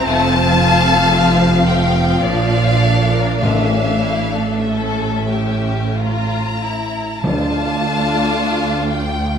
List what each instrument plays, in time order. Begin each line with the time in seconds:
Already playing: viola section C4
0.04 double bass section F1, cello section F2, viola section F3, violin section A3 F5 A5
0.34 violin section C4
0.60 violin section F4
0.87 violin section A4
1.13 violin section F4
1.40 violin section C4
1.67 violin section A3 G5
1.95 violin section C4
2.22 double bass section A#1, cello section A#2, viola section D4, violin section D4 D5 F5
2.53 violin section F4
2.81 violin section A4
3.11 violin section A#4
3.39 double bass section A1, cello section A2, timpani A2, violin section A3 E5 F5, viola section A3
3.71 violin section C#4
4.02 violin section E4
4.32 violin section A4
4.62 viola section C#4, violin section A4 E5
5.30 violin section G4
5.98 violin section F4 A#5
6.61 violin section E4
7.21 double bass section D2, cello section D2, timpani D3, viola section A3 D4, violin section F4 F5 A5
8.89 violin section G5